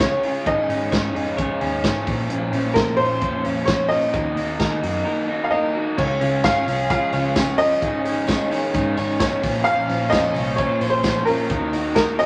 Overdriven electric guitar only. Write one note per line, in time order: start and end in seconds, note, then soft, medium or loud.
0.00 0.23 C#3 medium
0.00 0.23 G#3 medium
0.00 0.23 C#4 medium
0.00 0.24 F4 medium
0.00 0.22 G#4 medium
0.23 0.45 C#4 soft
0.23 0.47 F4 medium
0.23 0.46 G#4 medium
0.46 0.69 G#2 medium
0.46 0.69 D#3 medium
0.46 0.69 G#3 medium
0.46 0.69 C#4 medium
0.46 0.69 D#4 medium
0.46 0.68 G#4 medium
0.69 0.92 G#3 soft
0.69 0.92 C#4 soft
0.69 0.92 D#4 soft
0.69 0.92 G#4 soft
0.92 1.15 G#2 medium
0.92 1.15 D#3 medium
0.92 1.15 G#3 medium
0.92 1.15 C#4 medium
0.92 1.15 D#4 medium
0.92 1.14 G#4 medium
1.15 1.37 G#3 soft
1.15 1.38 C#4 soft
1.15 1.38 D#4 medium
1.15 1.38 G#4 medium
1.38 1.61 G#3 medium
1.38 1.61 C#4 medium
1.38 1.61 D#4 medium
1.38 1.60 G#4 medium
1.61 1.84 G#3 medium
1.61 1.84 C#4 medium
1.61 1.84 D#4 medium
1.61 1.84 G#4 medium
1.84 2.07 G#2 medium
1.84 2.07 D#3 medium
1.84 2.07 G#3 medium
1.84 2.08 C#4 medium
1.84 2.08 D#4 medium
1.84 2.06 G#4 medium
2.07 2.30 A#3 soft
2.07 2.30 C#4 medium
2.07 2.30 F4 medium
2.07 2.30 C5 medium
2.30 2.53 A#2 medium
2.30 2.53 F3 medium
2.30 2.53 A#3 medium
2.30 2.53 C#4 medium
2.30 2.52 F4 medium
2.30 2.51 C5 medium
2.52 2.75 A#3 soft
2.52 2.76 C#4 medium
2.52 2.76 F4 medium
2.52 2.75 C5 medium
2.76 2.99 A#2 medium
2.76 2.99 F3 medium
2.76 2.99 A#3 medium
2.76 2.99 C#4 medium
2.76 2.98 F4 medium
2.76 2.97 C5 medium
2.98 3.21 A#3 soft
2.98 3.22 C#4 soft
2.98 3.22 F4 soft
2.98 3.21 C5 medium
3.22 3.45 A#3 medium
3.22 3.45 C#4 medium
3.22 3.44 F4 medium
3.22 3.43 C5 medium
3.44 3.67 A#3 soft
3.44 3.67 C#4 soft
3.44 3.67 F4 soft
3.44 3.67 C5 medium
3.67 3.90 A#2 medium
3.67 3.91 F3 medium
3.67 3.91 A#3 medium
3.67 3.90 C#4 medium
3.67 3.89 F4 medium
3.67 3.88 C5 medium
3.89 4.12 A#3 soft
3.89 4.13 C#4 soft
3.89 4.14 F4 soft
3.89 4.13 C5 medium
4.13 4.36 D#3 medium
4.13 4.37 A#3 medium
4.13 4.37 D#4 medium
4.13 4.36 F#4 medium
4.13 4.35 A#4 medium
4.36 4.59 D#4 soft
4.36 4.60 F#4 soft
4.36 4.59 A#4 medium
4.59 4.83 D#3 medium
4.59 4.83 A#3 medium
4.59 4.83 D#4 medium
4.59 4.83 F#4 medium
4.59 4.81 A#4 medium
4.82 5.05 D#4 soft
4.82 5.05 F#4 medium
4.82 5.05 A#4 medium
5.05 5.28 A#3 medium
5.05 5.29 D#4 medium
5.05 5.29 F#4 medium
5.05 5.27 A#4 medium
5.28 5.52 D#4 soft
5.28 5.53 F#4 medium
5.28 5.52 A#4 medium
5.52 5.75 D#3 medium
5.52 5.75 A#3 medium
5.52 5.76 D#4 loud
5.52 5.75 F#4 medium
5.52 5.74 A#4 loud
5.75 5.98 D#4 soft
5.75 5.99 F#4 medium
5.75 5.98 A#4 medium
5.98 6.21 C#3 medium
5.98 6.21 G#3 medium
5.98 6.21 C#4 medium
5.98 6.21 F4 medium
5.98 6.20 G#4 medium
6.21 6.45 C#4 soft
6.21 6.45 F4 medium
6.21 6.44 G#4 soft
6.45 6.68 C#3 medium
6.45 6.68 G#3 medium
6.45 6.68 C#4 medium
6.45 6.67 F4 medium
6.45 6.65 G#4 medium
6.66 6.90 C#4 soft
6.66 6.90 F4 soft
6.66 6.90 G#4 medium
6.90 7.13 G#3 medium
6.90 7.14 C#4 medium
6.90 7.13 F4 medium
6.90 7.11 G#4 medium
7.12 7.36 C#4 soft
7.12 7.36 F4 soft
7.12 7.36 G#4 medium
7.35 7.59 C#3 medium
7.35 7.59 G#3 medium
7.35 7.60 C#4 medium
7.35 7.59 F4 medium
7.35 7.58 G#4 medium
7.59 7.82 C#4 soft
7.59 7.83 F4 medium
7.59 7.82 G#4 medium
7.82 8.06 G#2 medium
7.82 8.06 D#3 medium
7.82 8.06 G#3 medium
7.82 8.05 C#4 medium
7.82 8.05 D#4 medium
7.82 8.04 G#4 medium
8.05 8.27 G#3 soft
8.05 8.28 C#4 soft
8.05 8.28 D#4 medium
8.05 8.28 G#4 medium
8.28 8.51 G#2 medium
8.28 8.51 D#3 medium
8.28 8.52 G#3 medium
8.28 8.51 C#4 medium
8.28 8.51 D#4 medium
8.28 8.49 G#4 loud
8.51 8.72 G#3 soft
8.51 8.73 C#4 medium
8.51 8.74 D#4 medium
8.51 8.74 G#4 medium
8.73 8.97 G#3 medium
8.73 8.97 C#4 medium
8.73 8.96 D#4 medium
8.73 8.95 G#4 medium
8.96 9.19 G#3 medium
8.96 9.20 C#4 medium
8.96 9.20 D#4 medium
8.96 9.20 G#4 medium
9.20 9.43 G#2 medium
9.20 9.44 D#3 medium
9.20 9.44 G#3 medium
9.20 9.43 C#4 medium
9.20 9.43 D#4 medium
9.20 9.42 G#4 medium
9.42 9.66 A#3 soft
9.42 9.66 C#4 soft
9.42 9.66 F4 medium
9.42 9.66 C5 medium
9.66 9.89 A#2 medium
9.66 9.90 F3 medium
9.66 9.90 A#3 medium
9.66 9.90 C#4 medium
9.66 9.89 F4 medium
9.66 9.88 C5 medium
9.89 10.11 A#3 soft
9.89 10.12 C#4 soft
9.89 10.12 F4 medium
9.89 10.12 C5 medium
10.12 10.35 A#2 medium
10.12 10.36 F3 medium
10.12 10.36 A#3 medium
10.12 10.36 C#4 medium
10.12 10.35 F4 medium
10.12 10.34 C5 medium
10.35 10.57 A#3 soft
10.35 10.58 C#4 soft
10.35 10.59 F4 medium
10.35 10.59 C5 medium
10.58 10.82 A#3 medium
10.58 10.82 C#4 medium
10.58 10.81 F4 medium
10.58 10.80 C5 medium
10.81 11.04 A#3 soft
10.81 11.05 C#4 soft
10.81 11.05 F4 medium
10.81 11.05 C5 medium
11.05 11.28 A#2 medium
11.05 11.28 F3 medium
11.05 11.28 A#3 medium
11.05 11.28 C#4 medium
11.05 11.28 F4 medium
11.05 11.26 C5 medium
11.28 11.50 A#3 soft
11.28 11.51 C#4 soft
11.28 11.51 F4 medium
11.28 11.51 C5 medium
11.50 11.74 D#3 medium
11.50 11.74 A#3 medium
11.50 11.74 D#4 medium
11.50 11.74 F#4 medium
11.50 11.72 A#4 medium
11.74 11.96 D#4 soft
11.74 11.97 F#4 soft
11.74 11.97 A#4 soft
11.96 12.20 D#3 medium
11.96 12.20 A#3 medium
11.96 12.20 D#4 medium
11.96 12.20 F#4 medium
11.96 12.18 A#4 medium
12.19 12.26 D#4 soft
12.19 12.26 F#4 soft
12.19 12.26 A#4 soft